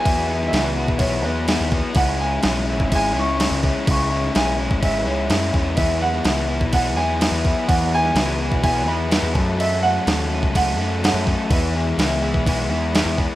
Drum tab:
CC |x---x---x---x---|x---x---x---x---|x---x---x---x---|x---x---x---x---|
SD |---oo-----o-o---|----o-----o-o---|---oo-----o-o---|---oo-----o-o---|
BD |o------oo-----o-|o------oo-----o-|o------oo-----o-|o------oo-----o-|

CC |x---x---x---x---|x---x---x---x---|x---x---x---x---|
SD |---oo-------o---|----o-----o-o---|----o-----o-o---|
BD |o------oo-----o-|-------oo-----o-|o------oo-----o-|